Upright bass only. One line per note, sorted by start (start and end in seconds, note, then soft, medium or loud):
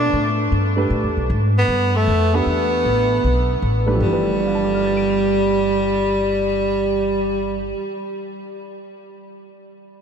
0.00 0.12 B2 medium
0.13 0.51 A2 medium
0.52 0.90 G2 medium
0.90 1.05 A2 medium
1.04 1.16 E2 medium
1.17 1.29 B1 medium
1.30 1.67 G#2 medium
1.68 2.06 G2 medium
2.08 2.45 F2 medium
2.46 2.83 E2 medium
2.85 3.23 A1 medium
3.24 3.61 B1 medium
3.62 4.00 A1 medium
4.00 7.71 G1 medium